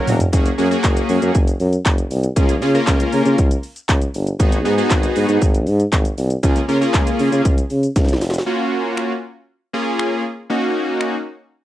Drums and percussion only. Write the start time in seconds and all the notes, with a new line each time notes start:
0.07 mid tom, open hi-hat, shaker
0.20 closed hi-hat, floor tom, shaker
0.33 kick, closed hi-hat, shaker
0.46 closed hi-hat, shaker
0.59 open hi-hat, shaker
0.72 closed hi-hat, shaker
0.84 kick, clap, closed hi-hat, shaker
0.97 closed hi-hat, shaker
1.09 open hi-hat, shaker
1.22 closed hi-hat, shaker
1.35 kick, closed hi-hat, shaker
1.48 closed hi-hat, shaker
1.60 open hi-hat, shaker
1.73 closed hi-hat, shaker
1.86 kick, clap, closed hi-hat, shaker
1.98 closed hi-hat, shaker
2.11 open hi-hat, shaker
2.23 closed hi-hat, shaker
2.36 kick, closed hi-hat, shaker
2.49 closed hi-hat, shaker
2.62 open hi-hat, shaker
2.75 closed hi-hat, shaker
2.87 kick, clap, closed hi-hat, shaker
3.00 closed hi-hat, shaker
3.12 open hi-hat, shaker
3.26 closed hi-hat, shaker
3.38 kick, closed hi-hat, shaker
3.51 closed hi-hat, shaker
3.63 open hi-hat, shaker
3.76 closed hi-hat, shaker
3.89 kick, clap, closed hi-hat, shaker
4.02 closed hi-hat, shaker
4.14 open hi-hat, shaker
4.27 closed hi-hat, shaker
4.40 kick, closed hi-hat, shaker
4.52 closed hi-hat, shaker
4.65 open hi-hat, shaker
4.78 closed hi-hat, shaker
4.91 kick, clap, closed hi-hat, shaker
5.03 closed hi-hat, shaker
5.16 open hi-hat, shaker
5.29 closed hi-hat, shaker
5.42 kick, closed hi-hat, shaker
5.55 closed hi-hat, shaker
5.67 open hi-hat, shaker
5.80 closed hi-hat, shaker
5.93 kick, clap, closed hi-hat, shaker
6.05 closed hi-hat, shaker
6.18 open hi-hat, shaker
6.30 closed hi-hat, shaker
6.43 kick, closed hi-hat, shaker
6.56 closed hi-hat, shaker
6.69 open hi-hat, shaker
6.82 closed hi-hat, shaker
6.94 kick, clap, closed hi-hat, shaker
7.07 closed hi-hat, shaker
7.19 open hi-hat, shaker
7.33 closed hi-hat, shaker
7.45 kick, closed hi-hat, shaker
7.58 closed hi-hat, shaker
7.70 open hi-hat, shaker
7.83 closed hi-hat, shaker
7.96 kick, snare, closed hi-hat, shaker
8.04 snare
8.09 closed hi-hat, shaker
8.13 snare
8.21 snare, open hi-hat, shaker
8.30 snare, closed hi-hat, shaker
8.38 snare
8.97 finger snap
9.99 finger snap
11.01 finger snap